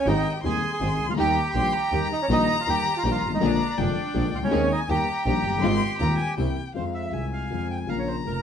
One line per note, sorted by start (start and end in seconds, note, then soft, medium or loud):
0.06 0.22 G#1 medium
0.06 0.23 G#1 medium
0.06 0.22 G#2 medium
0.06 0.22 D#3 medium
0.06 0.23 G#3 medium
0.06 0.23 C4 medium
0.06 0.33 D#4 medium
0.06 0.23 G4 medium
0.06 0.33 D#5 medium
0.06 0.43 G5 medium
0.36 0.40 G4 medium
0.36 0.40 G5 medium
0.43 0.59 D#1 medium
0.43 0.59 D#2 medium
0.43 0.59 D#3 soft
0.43 0.59 G#3 soft
0.43 0.59 C4 soft
0.43 0.60 C4 soft
0.43 0.59 G4 soft
0.43 0.60 G4 soft
0.43 0.70 G#4 medium
0.43 0.72 G#5 medium
0.43 1.13 C6 medium
0.72 1.06 G#4 medium
0.72 1.07 G#5 medium
0.80 0.96 G#1 medium
0.80 0.96 G#1 soft
0.80 0.96 G#2 soft
0.80 0.96 D#3 soft
0.80 0.96 G#3 soft
0.80 0.96 C4 soft
0.80 0.96 G4 soft
0.80 0.96 G4 medium
0.99 1.16 C#2 medium
1.04 1.08 C2 soft
1.08 1.13 C#2 medium
1.08 1.13 F4 medium
1.08 1.14 F5 medium
1.13 1.18 D2 medium
1.13 1.33 D#2 medium
1.17 1.33 D#2 medium
1.17 1.33 D#3 medium
1.17 1.33 G3 medium
1.17 1.33 A#3 medium
1.17 1.33 D#4 medium
1.17 1.33 G4 medium
1.17 2.08 G4 medium
1.17 2.08 G5 loud
1.17 1.52 A#5 medium
1.54 1.70 A#1 medium
1.54 1.70 A#2 soft
1.54 1.70 D#3 soft
1.54 1.70 G3 soft
1.54 1.70 A#3 soft
1.54 1.70 D#4 soft
1.54 1.70 G4 soft
1.54 1.70 G4 medium
1.54 1.75 C6 medium
1.73 3.41 A#5 loud
1.91 2.08 D#2 medium
1.91 2.08 D#3 soft
1.91 2.08 G3 soft
1.91 2.07 A#3 soft
1.91 2.08 A#3 soft
1.91 2.08 D#4 soft
1.91 2.08 G4 soft
2.12 2.20 D#4 medium
2.12 2.21 D#5 medium
2.22 2.26 C#4 medium
2.22 2.26 C#5 medium
2.29 2.45 A#1 medium
2.29 2.45 A#2 medium
2.29 2.45 D#3 medium
2.29 2.45 G3 medium
2.29 2.45 A#3 medium
2.29 2.45 D#4 medium
2.29 2.57 D#4 medium
2.29 2.45 G4 medium
2.33 2.60 D#5 medium
2.60 2.68 F4 soft
2.60 2.68 F5 medium
2.66 2.83 D#2 medium
2.66 2.83 D#3 soft
2.66 2.82 G3 soft
2.66 2.83 A#3 soft
2.66 2.83 D#4 soft
2.66 2.83 G4 medium
2.66 2.83 G4 soft
2.66 2.94 G4 medium
2.66 2.97 G5 medium
2.97 3.03 F4 medium
2.97 3.03 F5 medium
3.03 3.20 A#1 soft
3.03 3.20 A#1 medium
3.03 3.20 A#2 soft
3.03 3.20 D#3 soft
3.03 3.20 G3 soft
3.03 3.20 A#3 soft
3.03 3.20 D#4 soft
3.03 3.20 G4 medium
3.03 3.20 G4 soft
3.03 3.10 G5 medium
3.11 3.32 F4 medium
3.11 3.32 F5 medium
3.23 3.41 G#1 medium
3.28 3.32 G1 soft
3.28 3.36 G#1 medium
3.34 3.41 A1 medium
3.34 3.42 D#4 medium
3.34 3.42 D#5 medium
3.41 3.57 A#1 medium
3.41 3.56 A#2 medium
3.41 3.56 D3 medium
3.41 3.57 G#3 medium
3.41 3.57 A#3 medium
3.41 3.57 D4 medium
3.41 4.30 D4 medium
3.41 3.57 F4 medium
3.41 3.57 G#4 medium
3.41 4.37 D5 medium
3.41 3.80 A#5 medium
3.77 3.93 F1 medium
3.77 3.94 F1 medium
3.77 3.93 F2 medium
3.77 3.93 D3 soft
3.77 3.93 G#3 soft
3.77 3.93 A#3 soft
3.77 3.94 D4 soft
3.77 3.93 F4 soft
3.77 3.94 G#4 soft
3.77 4.45 G5 medium
4.14 4.30 A#1 medium
4.14 4.30 A#2 medium
4.14 4.30 D3 soft
4.14 4.30 G#3 soft
4.14 4.30 A#3 soft
4.14 4.30 D4 soft
4.14 4.30 F4 soft
4.14 4.30 G#4 soft
4.34 4.52 C#2 medium
4.34 4.39 F4 medium
4.34 4.39 F5 medium
4.38 4.42 C2 soft
4.43 4.47 C#2 medium
4.43 4.69 C#4 medium
4.43 4.72 C#5 medium
4.43 4.54 G5 medium
4.47 4.52 D2 medium
4.51 4.67 D#2 loud
4.51 4.67 D#2 medium
4.51 4.67 D#3 medium
4.51 4.67 G#3 medium
4.51 4.67 C4 medium
4.51 4.67 D#4 medium
4.51 4.67 G#4 medium
4.51 4.68 G#4 medium
4.51 4.91 G#5 medium
4.72 4.80 D#4 medium
4.72 4.80 D#5 medium
4.88 5.04 D#2 medium
4.88 5.04 D#3 medium
4.88 5.04 G3 soft
4.88 5.04 A#3 soft
4.88 5.04 D#4 soft
4.88 5.04 G4 medium
4.88 6.34 G4 medium
4.88 6.35 G5 medium
4.88 5.25 A#5 medium
5.25 5.41 A#1 medium
5.25 5.42 A#1 medium
5.25 5.42 A#2 medium
5.25 5.42 D#3 soft
5.25 5.42 G3 soft
5.25 5.41 A#3 soft
5.25 5.42 A#3 soft
5.25 5.41 D#4 soft
5.25 5.41 G4 medium
5.25 5.42 G4 soft
5.25 5.60 A#5 medium
5.44 5.62 F#1 medium
5.49 5.54 F1 soft
5.54 5.58 F#1 medium
5.54 5.63 G1 medium
5.62 5.78 G#1 medium
5.62 5.79 G#1 medium
5.62 5.79 G#2 medium
5.62 5.78 D#3 medium
5.62 5.78 G#3 medium
5.62 5.78 C4 medium
5.62 5.79 C4 medium
5.62 5.78 F4 medium
5.62 5.79 F4 medium
5.62 5.97 C6 loud
5.99 6.16 D#1 medium
5.99 6.16 D#2 medium
5.99 6.16 D#3 soft
5.99 6.16 G#3 soft
5.99 6.16 C4 soft
5.99 6.16 F4 soft
5.99 6.16 F4 medium
5.99 6.17 A#5 medium
6.19 6.36 G#5 medium
6.37 6.54 C2 medium
6.37 6.53 C3 medium
6.37 6.53 E3 soft
6.37 6.53 A#3 medium
6.37 6.54 A#3 soft
6.37 6.54 C4 soft
6.37 6.54 E4 medium
6.37 6.54 G4 medium
6.37 6.73 G5 medium
6.75 7.11 F2 soft
6.75 7.12 F2 soft
6.75 7.10 F3 soft
6.75 7.11 G#3 soft
6.75 7.12 C4 soft
6.75 7.13 G#4 soft
6.75 6.84 C5 medium
6.75 7.15 F5 medium
6.94 7.30 E5 medium
7.11 7.49 C2 soft
7.11 7.49 C3 soft
7.11 7.47 F3 soft
7.11 7.49 G#3 soft
7.11 7.49 C4 soft
7.11 7.50 G#4 soft
7.11 7.91 G#5 medium
7.33 7.68 F5 medium
7.50 7.87 F2 soft
7.50 7.87 F3 soft
7.50 7.87 G#3 soft
7.50 7.87 C4 soft
7.50 7.88 G#4 soft
7.70 7.79 G5 medium
7.87 8.24 A#1 medium
7.87 8.25 A#1 soft
7.87 8.25 A#2 soft
7.87 8.23 C#3 soft
7.87 8.24 F3 soft
7.87 8.25 A#3 soft
7.87 8.26 F4 soft
7.87 7.99 F5 medium
7.87 8.42 A#5 medium
7.99 8.08 C#5 medium
8.08 8.16 C5 medium
8.24 8.42 F1 soft
8.24 8.42 F2 soft
8.24 8.42 C#3 soft
8.24 8.42 F3 soft
8.24 8.42 A#3 soft
8.24 8.42 F4 soft
8.24 8.42 A#4 medium